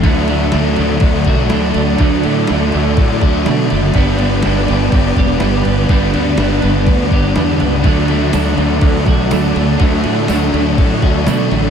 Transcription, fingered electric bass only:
X:1
M:4/4
L:1/8
Q:1/4=123
K:D
V:1 name="Fingered electric bass" clef=bass
D,,2 D,, D,, D,, B,,, D,, D,, | D,, A,, D,, D,, A,, D,, B,, F,,, | G,,,2 G,,, G,,, G,,, E,,, G,,, G,,, | G,,, D,, G,,, G,,, D,, G,,, E,, C,, |
D,,2 D,, D,, D,, B,,, D,, D,, | D,, A,, D,, D,, A,, D,, B,, A,,, |]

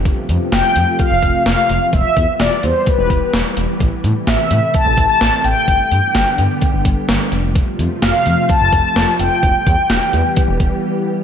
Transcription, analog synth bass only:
X:1
M:4/4
L:1/16
Q:1/4=128
K:Flyd
V:1 name="Analog synth bass" clef=bass
z2 F,, z F,,, z F,, z2 F,,, F,,, z F,,, z F,,, z | E,,, z E,, z E,,, z E,, z2 E,,, E,,, z E,,, z E,,, z | A,,, z A,, z A,,, z A,, z2 A,,, A,,, z A,,, z A,,, z | G,,, z G,, z G,,, z G,, z2 G,,, G,,, z G,,, z F,,,2- |
F,,, z F,, z F,,, z F,, z2 F,,, F,,, z F,,, z F,,, z | E,,, z E,, z E,,, z E,, z2 E,,, E,,, z4 z |]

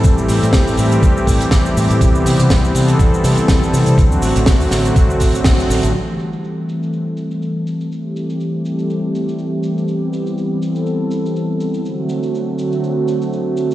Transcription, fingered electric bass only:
X:1
M:4/4
L:1/16
Q:"Swing 16ths" 1/4=122
K:Ador
V:1 name="Fingered electric bass" clef=bass
A,,, z A,, A,, A,,, z A,, z A,,, z A,, z A,,, z A,, A,, | C,, z C, C, C,, z C, z C,, z C, z C,, z C, C, | D,, z A,,, A,,, D,, z A,,, z D,, z A,,, z D,, z A,,, A,,, | z16 |
z16 | z16 | z16 |]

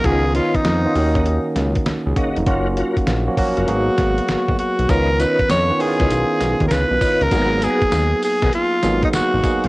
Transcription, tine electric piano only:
X:1
M:4/4
L:1/16
Q:"Swing 16ths" 1/4=99
K:G#dor
V:1 name="Tine electric piano"
z12 z G [A,F] [F,D]- | [F,D] z12 z3 | z16 | z16 |]
V:2 name="Tine electric piano"
[D,B,CE]4- [D,B,CE] [D,B,CE] [D,A,CF]6- [D,A,CF] z3 | [A,CEF]4- [A,CEF] [E,A,CF] [F,A,CF]2 [F,A,B,G]6- [F,A,B,G] z | [D,B,CE]4- [D,B,CE] [D,B,CE] [D,B,C=E^E]6- [D,B,C=E^E] z3 | [F,A,B,DG]6- [F,A,B,DG] z3 [F,A,B,DG]4 [F,A,B,DG]2 |]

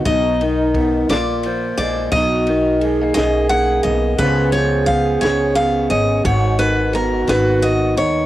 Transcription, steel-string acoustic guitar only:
X:1
M:6/8
L:1/8
Q:3/8=58
K:Cblyd
V:1 name="Steel-string acoustic guitar"
^d3 =d2 d | ^d3 d ^f d | c d f d f e | d c B c e d |]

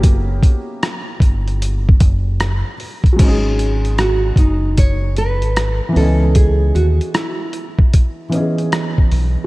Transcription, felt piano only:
X:1
M:4/4
L:1/8
Q:"Swing 16ths" 1/4=76
K:C#m
V:1 name="Felt piano"
[F,^A,CE=G]6- [F,A,CEG] z | [F,G,CDG]6- [F,G,CDG] [E,B,Cdg]- | [E,B,Cdg]4- [E,B,Cdg] [E,B,CGd]3 |]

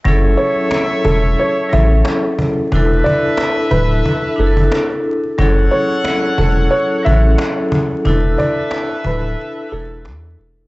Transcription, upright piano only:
X:1
M:4/4
L:1/16
Q:"Swing 16ths" 1/4=90
K:F#m
V:1 name="Upright piano"
z2 c2 z2 A z c2 e2 z4 | z2 d2 z2 B z3 A3 z3 | z2 c2 z2 A z c2 e2 z4 | z2 d2 z2 B z3 A3 z3 |]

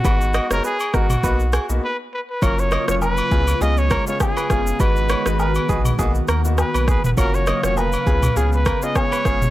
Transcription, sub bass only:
X:1
M:4/4
L:1/16
Q:"Swing 16ths" 1/4=101
K:F#
V:1 name="Sub bass" clef=bass
G,,,3 F,,, z2 G,,,2 B,,,3 B,,, z4 | F,,,3 E,,,3 C,,2 C,,3 z3 F,,,2 | G,,,3 G,,,3 A,,,2 B,,,2 D,,3 B,,,2 E,,, | F,,,3 E,,,3 C,,2 C,,3 z3 F,,,2 |]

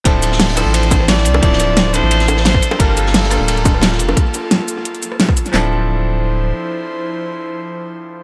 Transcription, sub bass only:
X:1
M:4/4
L:1/16
Q:1/4=175
K:Dm
V:1 name="Sub bass" clef=bass
D,,,6- D,,, A,,,6- A,,, C,,2 | D,,,6- D,,, A,,,6- A,,, z2 | G,,,6- G,,, D,,,6- D,,, F,,,2 | z16 |
D,,,12 z4 | z16 |]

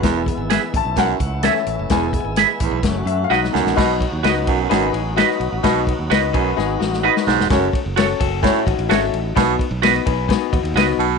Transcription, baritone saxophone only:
X:1
M:4/4
L:1/8
Q:1/4=129
K:Bmix
V:1 name="Baritone saxophone" clef=bass
E,, z3 F,, z3 | E,, z2 E,, z3 F,, | B,, z2 F,, F,, z3 | B,, z2 F,, z3 G,, |
F,, z3 A,, z3 | B,, z6 B,, |]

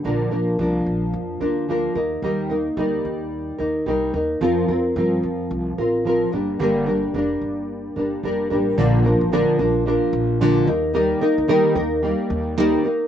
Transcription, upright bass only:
X:1
M:4/4
L:1/16
Q:"Swing 16ths" 1/4=110
K:Bb
V:1 name="Upright bass" clef=bass
B,,,2 B,,,2 C,,2 B,,,2 F,,2 D,,4 E,,2 | E,,4 D,,2 E,,4 E,,2 C,,2 E,,2 | F,,2 F,,2 G,,2 F,,2 C,,2 A,,,4 G,,,2 | G,,,4 F,,,2 G,,,4 G,,,2 F,,,2 A,,,2 |
B,,,3 A,,,2 z B,,,3 z B,,,4 E,,2- | E,,2 z D,,2 z E,,3 z E,,4 z2 |]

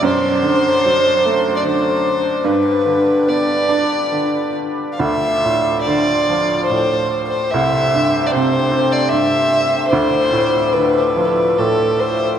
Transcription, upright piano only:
X:1
M:3/4
L:1/8
Q:1/4=73
K:Ddor
V:1 name="Upright piano" clef=bass
^F,, D, ^F, A, D,2 | G,, D, B, D D,2 | D,, A,, D, F, A,,2 | C,, G,, C, C G,,2 |
D,, A,, D, F, A,,2 |]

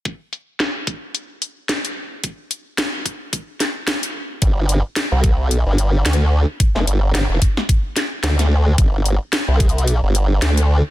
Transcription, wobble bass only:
X:1
M:4/4
L:1/16
Q:"Swing 16ths" 1/4=110
K:Cmix
V:1 name="Wobble bass" clef=bass
z16 | z16 | G,,,3 z2 C,,4 G,,,3 D,,3 z | z F,,, G,,,2 G,,, F,,, z6 D,,4 |
G,,,3 z2 C,,4 G,,,3 D,,3 z |]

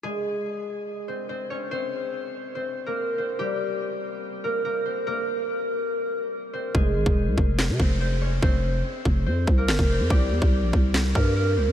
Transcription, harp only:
X:1
M:4/4
L:1/16
Q:1/4=143
K:Fm
V:1 name="Harp"
[A,A]8- [A,A]2 [Cc]2 [Cc]2 [Dd]2 | [Cc]8 [Cc]3 [B,B]3 [Cc]2 | [G,G]8- [G,G]2 [B,B]2 [B,B]2 [Cc]2 | [B,B]12- [B,B]2 [Cc]2 |
[A,A]8- [A,A]2 [Cc]2 [Cc]2 [Dd]2 | [Cc]8 [Cc]3 [B,B]3 [Cc]2 | [G,G]8- [G,G]2 [B,B]2 [B,B]2 [Cc]2 |]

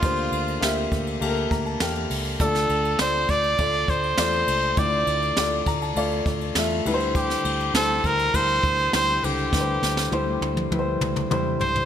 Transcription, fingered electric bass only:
X:1
M:4/4
L:1/8
Q:1/4=101
K:Dm
V:1 name="Fingered electric bass" clef=bass
D,, D,, D,, D,, D,, D,, E,, ^C,, | D,, D,, D,, D,, D,, D,, E,, ^C,, | D,, D,, D,, D,, D,, D,, E,, D,,- | D,, D,, D,, D,, D,, D,, D,, ^C,, |
D,, D,, D,, D,, D,, D,, E,, ^C,, |]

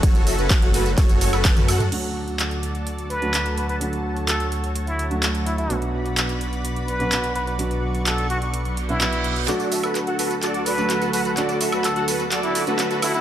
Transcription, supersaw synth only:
X:1
M:4/4
L:1/16
Q:1/4=127
K:Dlyd
V:1 name="Supersaw synth"
[FAc]2 [FAe] [FAB] z [FAf] [FAB] z [FAc]2 [FAc] [FAB]2 [FAB] [FAf]2 | z16 | z16 | z16 |
z16 | [FAd]2 [FAe] [FAB] z [FAf] [FAB] z [FAd]2 [FAd] [FAB]2 [FAB] [FAf]2 | [FAd]2 [FAe] [FAB] z [FAf] [FAB] z [FAd]2 [FAd] [FAB]2 [FAB] [FAf]2 |]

